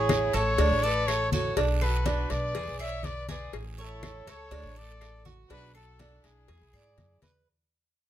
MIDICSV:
0, 0, Header, 1, 6, 480
1, 0, Start_track
1, 0, Tempo, 491400
1, 1534, Time_signature, 4, 2, 24, 8
1, 7909, End_track
2, 0, Start_track
2, 0, Title_t, "Trumpet"
2, 0, Program_c, 0, 56
2, 0, Note_on_c, 0, 68, 90
2, 346, Note_on_c, 0, 73, 105
2, 361, Note_off_c, 0, 68, 0
2, 810, Note_on_c, 0, 74, 109
2, 825, Note_off_c, 0, 73, 0
2, 1044, Note_on_c, 0, 73, 102
2, 1059, Note_off_c, 0, 74, 0
2, 1289, Note_off_c, 0, 73, 0
2, 1298, Note_on_c, 0, 73, 82
2, 1519, Note_off_c, 0, 73, 0
2, 1778, Note_on_c, 0, 71, 88
2, 2253, Note_on_c, 0, 74, 109
2, 2267, Note_off_c, 0, 71, 0
2, 2731, Note_off_c, 0, 74, 0
2, 2737, Note_on_c, 0, 76, 109
2, 2977, Note_on_c, 0, 74, 99
2, 2992, Note_off_c, 0, 76, 0
2, 3216, Note_off_c, 0, 74, 0
2, 3222, Note_on_c, 0, 74, 90
2, 3442, Note_off_c, 0, 74, 0
2, 3713, Note_on_c, 0, 69, 94
2, 4196, Note_on_c, 0, 73, 110
2, 4211, Note_off_c, 0, 69, 0
2, 4670, Note_on_c, 0, 74, 107
2, 4684, Note_off_c, 0, 73, 0
2, 5142, Note_off_c, 0, 74, 0
2, 5374, Note_on_c, 0, 71, 116
2, 5597, Note_off_c, 0, 71, 0
2, 5618, Note_on_c, 0, 69, 99
2, 6093, Note_on_c, 0, 68, 97
2, 6107, Note_off_c, 0, 69, 0
2, 7053, Note_off_c, 0, 68, 0
2, 7909, End_track
3, 0, Start_track
3, 0, Title_t, "Violin section"
3, 0, Program_c, 1, 48
3, 0, Note_on_c, 1, 64, 78
3, 311, Note_off_c, 1, 64, 0
3, 340, Note_on_c, 1, 69, 88
3, 817, Note_off_c, 1, 69, 0
3, 825, Note_on_c, 1, 71, 96
3, 1059, Note_off_c, 1, 71, 0
3, 1064, Note_on_c, 1, 69, 90
3, 1275, Note_off_c, 1, 69, 0
3, 1287, Note_on_c, 1, 69, 72
3, 1513, Note_off_c, 1, 69, 0
3, 1777, Note_on_c, 1, 66, 80
3, 2222, Note_off_c, 1, 66, 0
3, 2235, Note_on_c, 1, 71, 82
3, 2717, Note_on_c, 1, 73, 97
3, 2725, Note_off_c, 1, 71, 0
3, 2948, Note_off_c, 1, 73, 0
3, 2972, Note_on_c, 1, 71, 89
3, 3196, Note_off_c, 1, 71, 0
3, 3208, Note_on_c, 1, 71, 68
3, 3434, Note_off_c, 1, 71, 0
3, 3696, Note_on_c, 1, 64, 82
3, 4141, Note_off_c, 1, 64, 0
3, 4181, Note_on_c, 1, 69, 93
3, 4642, Note_off_c, 1, 69, 0
3, 4654, Note_on_c, 1, 69, 93
3, 5134, Note_off_c, 1, 69, 0
3, 5367, Note_on_c, 1, 66, 105
3, 5594, Note_off_c, 1, 66, 0
3, 5616, Note_on_c, 1, 66, 92
3, 6062, Note_off_c, 1, 66, 0
3, 6085, Note_on_c, 1, 64, 79
3, 7049, Note_off_c, 1, 64, 0
3, 7909, End_track
4, 0, Start_track
4, 0, Title_t, "Cuban tres"
4, 0, Program_c, 2, 25
4, 0, Note_on_c, 2, 73, 77
4, 317, Note_off_c, 2, 73, 0
4, 332, Note_on_c, 2, 69, 80
4, 565, Note_off_c, 2, 69, 0
4, 572, Note_on_c, 2, 62, 85
4, 806, Note_off_c, 2, 62, 0
4, 815, Note_on_c, 2, 69, 78
4, 1280, Note_off_c, 2, 69, 0
4, 1296, Note_on_c, 2, 66, 83
4, 1527, Note_off_c, 2, 66, 0
4, 1531, Note_on_c, 2, 62, 82
4, 1765, Note_off_c, 2, 62, 0
4, 1770, Note_on_c, 2, 69, 76
4, 2005, Note_off_c, 2, 69, 0
4, 2008, Note_on_c, 2, 62, 89
4, 2477, Note_off_c, 2, 62, 0
4, 2493, Note_on_c, 2, 68, 77
4, 2726, Note_off_c, 2, 68, 0
4, 2729, Note_on_c, 2, 74, 78
4, 3197, Note_off_c, 2, 74, 0
4, 3212, Note_on_c, 2, 68, 81
4, 3679, Note_off_c, 2, 68, 0
4, 3694, Note_on_c, 2, 73, 86
4, 4160, Note_off_c, 2, 73, 0
4, 4174, Note_on_c, 2, 69, 83
4, 4407, Note_off_c, 2, 69, 0
4, 4408, Note_on_c, 2, 62, 90
4, 4644, Note_off_c, 2, 62, 0
4, 4650, Note_on_c, 2, 69, 78
4, 5118, Note_off_c, 2, 69, 0
4, 5130, Note_on_c, 2, 66, 82
4, 5364, Note_off_c, 2, 66, 0
4, 5373, Note_on_c, 2, 62, 83
4, 5606, Note_off_c, 2, 62, 0
4, 5614, Note_on_c, 2, 69, 83
4, 5847, Note_off_c, 2, 69, 0
4, 5853, Note_on_c, 2, 62, 87
4, 6319, Note_off_c, 2, 62, 0
4, 6333, Note_on_c, 2, 68, 73
4, 6566, Note_off_c, 2, 68, 0
4, 6577, Note_on_c, 2, 74, 80
4, 7041, Note_off_c, 2, 74, 0
4, 7057, Note_on_c, 2, 71, 79
4, 7288, Note_off_c, 2, 71, 0
4, 7909, End_track
5, 0, Start_track
5, 0, Title_t, "Upright bass"
5, 0, Program_c, 3, 32
5, 0, Note_on_c, 3, 33, 96
5, 294, Note_off_c, 3, 33, 0
5, 333, Note_on_c, 3, 33, 91
5, 561, Note_off_c, 3, 33, 0
5, 568, Note_on_c, 3, 38, 112
5, 682, Note_off_c, 3, 38, 0
5, 688, Note_on_c, 3, 33, 90
5, 1492, Note_off_c, 3, 33, 0
5, 1530, Note_on_c, 3, 35, 102
5, 2216, Note_off_c, 3, 35, 0
5, 2251, Note_on_c, 3, 35, 94
5, 2480, Note_off_c, 3, 35, 0
5, 2492, Note_on_c, 3, 40, 113
5, 2607, Note_off_c, 3, 40, 0
5, 2612, Note_on_c, 3, 35, 91
5, 3414, Note_off_c, 3, 35, 0
5, 3447, Note_on_c, 3, 33, 102
5, 4134, Note_off_c, 3, 33, 0
5, 4168, Note_on_c, 3, 37, 93
5, 4399, Note_off_c, 3, 37, 0
5, 4409, Note_on_c, 3, 38, 113
5, 4525, Note_off_c, 3, 38, 0
5, 4529, Note_on_c, 3, 33, 85
5, 5333, Note_off_c, 3, 33, 0
5, 5370, Note_on_c, 3, 35, 102
5, 6056, Note_off_c, 3, 35, 0
5, 6096, Note_on_c, 3, 35, 90
5, 6323, Note_off_c, 3, 35, 0
5, 6335, Note_on_c, 3, 40, 107
5, 6448, Note_off_c, 3, 40, 0
5, 6455, Note_on_c, 3, 35, 91
5, 6569, Note_off_c, 3, 35, 0
5, 6576, Note_on_c, 3, 44, 92
5, 6791, Note_off_c, 3, 44, 0
5, 6811, Note_on_c, 3, 42, 84
5, 7028, Note_off_c, 3, 42, 0
5, 7056, Note_on_c, 3, 40, 86
5, 7271, Note_off_c, 3, 40, 0
5, 7909, End_track
6, 0, Start_track
6, 0, Title_t, "Drums"
6, 90, Note_on_c, 9, 63, 103
6, 93, Note_on_c, 9, 56, 76
6, 93, Note_on_c, 9, 75, 69
6, 99, Note_on_c, 9, 73, 76
6, 188, Note_off_c, 9, 63, 0
6, 190, Note_off_c, 9, 56, 0
6, 190, Note_off_c, 9, 75, 0
6, 197, Note_off_c, 9, 73, 0
6, 327, Note_on_c, 9, 56, 72
6, 337, Note_on_c, 9, 73, 72
6, 340, Note_on_c, 9, 63, 39
6, 425, Note_off_c, 9, 56, 0
6, 434, Note_off_c, 9, 73, 0
6, 438, Note_off_c, 9, 63, 0
6, 571, Note_on_c, 9, 56, 120
6, 575, Note_on_c, 9, 63, 39
6, 579, Note_on_c, 9, 74, 71
6, 668, Note_off_c, 9, 56, 0
6, 672, Note_off_c, 9, 63, 0
6, 677, Note_off_c, 9, 74, 0
6, 809, Note_on_c, 9, 63, 37
6, 906, Note_off_c, 9, 63, 0
6, 1050, Note_on_c, 9, 63, 34
6, 1055, Note_on_c, 9, 75, 66
6, 1058, Note_on_c, 9, 56, 70
6, 1059, Note_on_c, 9, 73, 77
6, 1147, Note_off_c, 9, 63, 0
6, 1153, Note_off_c, 9, 75, 0
6, 1155, Note_off_c, 9, 56, 0
6, 1157, Note_off_c, 9, 73, 0
6, 1290, Note_on_c, 9, 63, 77
6, 1300, Note_on_c, 9, 73, 77
6, 1388, Note_off_c, 9, 63, 0
6, 1398, Note_off_c, 9, 73, 0
6, 1532, Note_on_c, 9, 63, 36
6, 1533, Note_on_c, 9, 56, 110
6, 1533, Note_on_c, 9, 74, 74
6, 1629, Note_off_c, 9, 63, 0
6, 1630, Note_off_c, 9, 74, 0
6, 1631, Note_off_c, 9, 56, 0
6, 1774, Note_on_c, 9, 63, 36
6, 1777, Note_on_c, 9, 75, 69
6, 1872, Note_off_c, 9, 63, 0
6, 1874, Note_off_c, 9, 75, 0
6, 2010, Note_on_c, 9, 63, 104
6, 2013, Note_on_c, 9, 56, 73
6, 2017, Note_on_c, 9, 73, 75
6, 2107, Note_off_c, 9, 63, 0
6, 2111, Note_off_c, 9, 56, 0
6, 2115, Note_off_c, 9, 73, 0
6, 2247, Note_on_c, 9, 56, 74
6, 2252, Note_on_c, 9, 63, 39
6, 2259, Note_on_c, 9, 73, 75
6, 2345, Note_off_c, 9, 56, 0
6, 2350, Note_off_c, 9, 63, 0
6, 2356, Note_off_c, 9, 73, 0
6, 2488, Note_on_c, 9, 63, 38
6, 2489, Note_on_c, 9, 56, 113
6, 2491, Note_on_c, 9, 74, 71
6, 2585, Note_off_c, 9, 63, 0
6, 2587, Note_off_c, 9, 56, 0
6, 2588, Note_off_c, 9, 74, 0
6, 2727, Note_on_c, 9, 63, 37
6, 2738, Note_on_c, 9, 75, 75
6, 2824, Note_off_c, 9, 63, 0
6, 2836, Note_off_c, 9, 75, 0
6, 2961, Note_on_c, 9, 63, 81
6, 2971, Note_on_c, 9, 56, 70
6, 2973, Note_on_c, 9, 73, 74
6, 3059, Note_off_c, 9, 63, 0
6, 3069, Note_off_c, 9, 56, 0
6, 3071, Note_off_c, 9, 73, 0
6, 3209, Note_on_c, 9, 63, 85
6, 3210, Note_on_c, 9, 56, 72
6, 3225, Note_on_c, 9, 73, 78
6, 3307, Note_off_c, 9, 63, 0
6, 3308, Note_off_c, 9, 56, 0
6, 3322, Note_off_c, 9, 73, 0
6, 3452, Note_on_c, 9, 56, 110
6, 3454, Note_on_c, 9, 63, 37
6, 3455, Note_on_c, 9, 75, 69
6, 3460, Note_on_c, 9, 74, 80
6, 3550, Note_off_c, 9, 56, 0
6, 3552, Note_off_c, 9, 63, 0
6, 3553, Note_off_c, 9, 75, 0
6, 3558, Note_off_c, 9, 74, 0
6, 3690, Note_on_c, 9, 63, 37
6, 3788, Note_off_c, 9, 63, 0
6, 3935, Note_on_c, 9, 63, 106
6, 3936, Note_on_c, 9, 73, 75
6, 3937, Note_on_c, 9, 75, 68
6, 3939, Note_on_c, 9, 56, 71
6, 4033, Note_off_c, 9, 63, 0
6, 4034, Note_off_c, 9, 73, 0
6, 4035, Note_off_c, 9, 75, 0
6, 4037, Note_off_c, 9, 56, 0
6, 4176, Note_on_c, 9, 56, 72
6, 4179, Note_on_c, 9, 73, 77
6, 4180, Note_on_c, 9, 63, 37
6, 4273, Note_off_c, 9, 56, 0
6, 4276, Note_off_c, 9, 73, 0
6, 4277, Note_off_c, 9, 63, 0
6, 4415, Note_on_c, 9, 63, 37
6, 4416, Note_on_c, 9, 74, 75
6, 4418, Note_on_c, 9, 56, 115
6, 4512, Note_off_c, 9, 63, 0
6, 4513, Note_off_c, 9, 74, 0
6, 4516, Note_off_c, 9, 56, 0
6, 4664, Note_on_c, 9, 63, 37
6, 4762, Note_off_c, 9, 63, 0
6, 4894, Note_on_c, 9, 63, 34
6, 4894, Note_on_c, 9, 75, 66
6, 4896, Note_on_c, 9, 73, 71
6, 4899, Note_on_c, 9, 56, 75
6, 4991, Note_off_c, 9, 63, 0
6, 4992, Note_off_c, 9, 75, 0
6, 4994, Note_off_c, 9, 73, 0
6, 4997, Note_off_c, 9, 56, 0
6, 5136, Note_on_c, 9, 73, 77
6, 5138, Note_on_c, 9, 63, 77
6, 5234, Note_off_c, 9, 73, 0
6, 5236, Note_off_c, 9, 63, 0
6, 5378, Note_on_c, 9, 56, 111
6, 5380, Note_on_c, 9, 74, 77
6, 5383, Note_on_c, 9, 63, 35
6, 5475, Note_off_c, 9, 56, 0
6, 5477, Note_off_c, 9, 74, 0
6, 5480, Note_off_c, 9, 63, 0
6, 5613, Note_on_c, 9, 75, 68
6, 5626, Note_on_c, 9, 63, 34
6, 5711, Note_off_c, 9, 75, 0
6, 5723, Note_off_c, 9, 63, 0
6, 5857, Note_on_c, 9, 56, 76
6, 5860, Note_on_c, 9, 73, 75
6, 5861, Note_on_c, 9, 63, 105
6, 5955, Note_off_c, 9, 56, 0
6, 5958, Note_off_c, 9, 73, 0
6, 5959, Note_off_c, 9, 63, 0
6, 6095, Note_on_c, 9, 56, 71
6, 6096, Note_on_c, 9, 73, 73
6, 6109, Note_on_c, 9, 63, 38
6, 6192, Note_off_c, 9, 56, 0
6, 6193, Note_off_c, 9, 73, 0
6, 6207, Note_off_c, 9, 63, 0
6, 6333, Note_on_c, 9, 56, 116
6, 6340, Note_on_c, 9, 74, 75
6, 6341, Note_on_c, 9, 63, 36
6, 6431, Note_off_c, 9, 56, 0
6, 6438, Note_off_c, 9, 74, 0
6, 6439, Note_off_c, 9, 63, 0
6, 6581, Note_on_c, 9, 75, 71
6, 6582, Note_on_c, 9, 63, 37
6, 6678, Note_off_c, 9, 75, 0
6, 6680, Note_off_c, 9, 63, 0
6, 6815, Note_on_c, 9, 56, 69
6, 6820, Note_on_c, 9, 63, 86
6, 6821, Note_on_c, 9, 73, 72
6, 6913, Note_off_c, 9, 56, 0
6, 6918, Note_off_c, 9, 63, 0
6, 6919, Note_off_c, 9, 73, 0
6, 7052, Note_on_c, 9, 56, 71
6, 7056, Note_on_c, 9, 63, 91
6, 7059, Note_on_c, 9, 73, 73
6, 7150, Note_off_c, 9, 56, 0
6, 7154, Note_off_c, 9, 63, 0
6, 7157, Note_off_c, 9, 73, 0
6, 7909, End_track
0, 0, End_of_file